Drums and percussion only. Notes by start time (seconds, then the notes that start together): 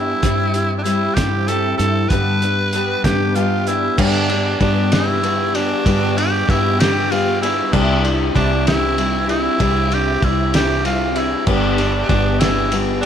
0.23 kick, closed hi-hat
0.54 closed hi-hat
0.85 closed hi-hat
1.17 kick, snare, closed hi-hat
1.48 closed hi-hat
1.79 closed hi-hat
2.10 kick, closed hi-hat
2.42 closed hi-hat
2.73 closed hi-hat
3.04 kick, snare, closed hi-hat
3.35 closed hi-hat
3.67 closed hi-hat
3.98 kick, crash
4.29 ride
4.61 kick, ride
4.92 snare, ride
5.23 ride
5.55 ride
5.86 kick, ride
6.18 ride
6.49 kick, ride
6.80 snare, ride
7.12 ride
7.43 ride
7.73 kick, crash
8.05 ride
8.36 kick, ride
8.67 snare, ride
8.98 ride
9.29 ride
9.60 kick, ride
9.92 ride
10.22 kick, ride
10.54 snare, ride
10.85 ride
11.16 ride
11.47 kick, crash
11.78 ride
12.09 kick, ride
12.41 snare, ride
12.72 ride